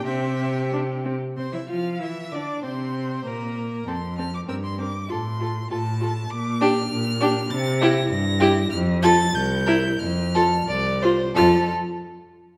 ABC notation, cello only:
X:1
M:2/4
L:1/16
Q:1/4=96
K:F
V:1 name="Cello" clef=bass
C,6 z2 | C, E, F,2 E,2 D,2 | C,4 B,,4 | F,,4 G,,4 |
A,,4 A,,4 | B,,4 B,,4 | C,4 G,,4 | F,,4 C,,4 |
F,,4 C,,4 | F,,2 z6 |]